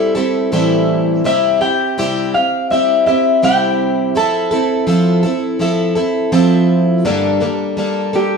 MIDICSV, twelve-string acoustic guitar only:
0, 0, Header, 1, 2, 480
1, 0, Start_track
1, 0, Tempo, 726392
1, 823, Time_signature, 4, 2, 24, 8
1, 5534, End_track
2, 0, Start_track
2, 0, Title_t, "Twelve-string acoustic guitar"
2, 0, Program_c, 0, 25
2, 0, Note_on_c, 0, 55, 61
2, 0, Note_on_c, 0, 60, 67
2, 0, Note_on_c, 0, 64, 68
2, 0, Note_on_c, 0, 69, 72
2, 90, Note_off_c, 0, 69, 0
2, 98, Note_off_c, 0, 64, 0
2, 98, Note_on_c, 0, 69, 56
2, 102, Note_off_c, 0, 60, 0
2, 103, Note_off_c, 0, 55, 0
2, 106, Note_on_c, 0, 64, 51
2, 110, Note_on_c, 0, 60, 46
2, 116, Note_on_c, 0, 55, 43
2, 339, Note_off_c, 0, 55, 0
2, 341, Note_off_c, 0, 69, 0
2, 342, Note_off_c, 0, 60, 0
2, 343, Note_on_c, 0, 45, 88
2, 345, Note_off_c, 0, 64, 0
2, 346, Note_on_c, 0, 52, 86
2, 347, Note_on_c, 0, 55, 82
2, 349, Note_on_c, 0, 60, 83
2, 352, Note_on_c, 0, 64, 90
2, 352, Note_on_c, 0, 69, 94
2, 819, Note_off_c, 0, 52, 0
2, 820, Note_off_c, 0, 55, 0
2, 822, Note_on_c, 0, 48, 66
2, 823, Note_off_c, 0, 45, 0
2, 825, Note_off_c, 0, 60, 0
2, 827, Note_off_c, 0, 69, 0
2, 828, Note_on_c, 0, 55, 70
2, 828, Note_on_c, 0, 60, 79
2, 830, Note_off_c, 0, 64, 0
2, 833, Note_on_c, 0, 64, 73
2, 833, Note_on_c, 0, 67, 77
2, 1055, Note_off_c, 0, 67, 0
2, 1062, Note_off_c, 0, 48, 0
2, 1063, Note_on_c, 0, 67, 47
2, 1064, Note_off_c, 0, 64, 0
2, 1065, Note_off_c, 0, 55, 0
2, 1065, Note_off_c, 0, 60, 0
2, 1072, Note_on_c, 0, 64, 43
2, 1077, Note_on_c, 0, 60, 39
2, 1303, Note_off_c, 0, 67, 0
2, 1305, Note_off_c, 0, 60, 0
2, 1307, Note_off_c, 0, 64, 0
2, 1307, Note_on_c, 0, 48, 80
2, 1311, Note_on_c, 0, 55, 74
2, 1313, Note_on_c, 0, 60, 79
2, 1315, Note_on_c, 0, 64, 83
2, 1317, Note_on_c, 0, 67, 84
2, 1540, Note_off_c, 0, 67, 0
2, 1545, Note_off_c, 0, 48, 0
2, 1547, Note_off_c, 0, 55, 0
2, 1547, Note_off_c, 0, 60, 0
2, 1548, Note_on_c, 0, 67, 47
2, 1549, Note_off_c, 0, 64, 0
2, 1566, Note_on_c, 0, 60, 38
2, 1785, Note_off_c, 0, 67, 0
2, 1787, Note_off_c, 0, 60, 0
2, 1788, Note_on_c, 0, 55, 65
2, 1795, Note_on_c, 0, 60, 59
2, 1798, Note_on_c, 0, 64, 62
2, 1805, Note_on_c, 0, 67, 64
2, 2017, Note_off_c, 0, 67, 0
2, 2024, Note_off_c, 0, 64, 0
2, 2025, Note_off_c, 0, 55, 0
2, 2025, Note_on_c, 0, 67, 46
2, 2029, Note_off_c, 0, 60, 0
2, 2032, Note_on_c, 0, 64, 42
2, 2040, Note_on_c, 0, 60, 40
2, 2261, Note_off_c, 0, 60, 0
2, 2263, Note_off_c, 0, 67, 0
2, 2263, Note_on_c, 0, 48, 69
2, 2264, Note_off_c, 0, 64, 0
2, 2266, Note_on_c, 0, 55, 77
2, 2269, Note_on_c, 0, 60, 73
2, 2272, Note_on_c, 0, 64, 83
2, 2275, Note_on_c, 0, 67, 77
2, 2738, Note_off_c, 0, 60, 0
2, 2739, Note_off_c, 0, 55, 0
2, 2740, Note_off_c, 0, 64, 0
2, 2742, Note_off_c, 0, 48, 0
2, 2742, Note_on_c, 0, 53, 72
2, 2746, Note_on_c, 0, 60, 75
2, 2748, Note_off_c, 0, 67, 0
2, 2748, Note_on_c, 0, 64, 75
2, 2754, Note_on_c, 0, 69, 78
2, 2973, Note_off_c, 0, 69, 0
2, 2981, Note_off_c, 0, 64, 0
2, 2981, Note_on_c, 0, 69, 54
2, 2982, Note_off_c, 0, 53, 0
2, 2984, Note_off_c, 0, 60, 0
2, 2989, Note_on_c, 0, 64, 46
2, 2993, Note_on_c, 0, 60, 39
2, 3213, Note_off_c, 0, 60, 0
2, 3217, Note_off_c, 0, 64, 0
2, 3217, Note_on_c, 0, 53, 74
2, 3219, Note_off_c, 0, 69, 0
2, 3221, Note_on_c, 0, 60, 75
2, 3225, Note_on_c, 0, 64, 76
2, 3227, Note_on_c, 0, 69, 85
2, 3448, Note_off_c, 0, 69, 0
2, 3456, Note_on_c, 0, 69, 58
2, 3459, Note_off_c, 0, 53, 0
2, 3459, Note_off_c, 0, 64, 0
2, 3461, Note_off_c, 0, 60, 0
2, 3467, Note_on_c, 0, 64, 54
2, 3474, Note_on_c, 0, 60, 45
2, 3693, Note_off_c, 0, 60, 0
2, 3695, Note_on_c, 0, 53, 60
2, 3699, Note_off_c, 0, 64, 0
2, 3699, Note_off_c, 0, 69, 0
2, 3701, Note_on_c, 0, 60, 65
2, 3707, Note_on_c, 0, 64, 68
2, 3711, Note_on_c, 0, 69, 71
2, 3927, Note_off_c, 0, 69, 0
2, 3934, Note_off_c, 0, 64, 0
2, 3935, Note_on_c, 0, 69, 52
2, 3939, Note_off_c, 0, 53, 0
2, 3941, Note_off_c, 0, 60, 0
2, 3941, Note_on_c, 0, 64, 44
2, 3951, Note_on_c, 0, 60, 39
2, 4173, Note_off_c, 0, 60, 0
2, 4174, Note_off_c, 0, 64, 0
2, 4177, Note_on_c, 0, 53, 86
2, 4178, Note_off_c, 0, 69, 0
2, 4181, Note_on_c, 0, 60, 84
2, 4182, Note_on_c, 0, 64, 90
2, 4188, Note_on_c, 0, 69, 94
2, 4656, Note_on_c, 0, 43, 80
2, 4657, Note_off_c, 0, 53, 0
2, 4658, Note_off_c, 0, 69, 0
2, 4658, Note_on_c, 0, 50, 75
2, 4659, Note_on_c, 0, 55, 78
2, 4660, Note_off_c, 0, 60, 0
2, 4660, Note_off_c, 0, 64, 0
2, 4662, Note_on_c, 0, 58, 81
2, 4662, Note_on_c, 0, 62, 78
2, 4666, Note_on_c, 0, 69, 77
2, 4884, Note_off_c, 0, 69, 0
2, 4890, Note_off_c, 0, 62, 0
2, 4892, Note_on_c, 0, 69, 47
2, 4895, Note_off_c, 0, 58, 0
2, 4898, Note_on_c, 0, 62, 49
2, 4899, Note_off_c, 0, 43, 0
2, 4900, Note_off_c, 0, 50, 0
2, 4900, Note_off_c, 0, 55, 0
2, 4903, Note_on_c, 0, 58, 48
2, 4909, Note_on_c, 0, 55, 43
2, 5125, Note_off_c, 0, 55, 0
2, 5133, Note_on_c, 0, 55, 63
2, 5134, Note_off_c, 0, 58, 0
2, 5137, Note_off_c, 0, 69, 0
2, 5140, Note_off_c, 0, 62, 0
2, 5142, Note_on_c, 0, 58, 64
2, 5147, Note_on_c, 0, 62, 68
2, 5150, Note_on_c, 0, 69, 69
2, 5366, Note_off_c, 0, 69, 0
2, 5371, Note_off_c, 0, 62, 0
2, 5374, Note_on_c, 0, 69, 44
2, 5377, Note_off_c, 0, 55, 0
2, 5378, Note_off_c, 0, 58, 0
2, 5379, Note_on_c, 0, 62, 42
2, 5386, Note_on_c, 0, 58, 37
2, 5390, Note_on_c, 0, 55, 35
2, 5534, Note_off_c, 0, 55, 0
2, 5534, Note_off_c, 0, 58, 0
2, 5534, Note_off_c, 0, 62, 0
2, 5534, Note_off_c, 0, 69, 0
2, 5534, End_track
0, 0, End_of_file